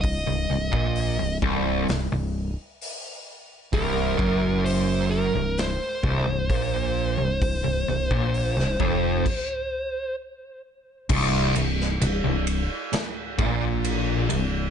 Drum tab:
CC |----------------|----------------|--------x-------|x---------------|
RD |----------------|----------------|----------------|--x-x-x-x-x-x-x-|
HH |o---o---o---o---|o---o---o---o---|o---o-----------|----------------|
SD |--------o-------|--------o-------|-----o----------|---o----o-------|
BD |o--o--o---------|o-o-------o-o---|o--o--o-o-------|o---------o-----|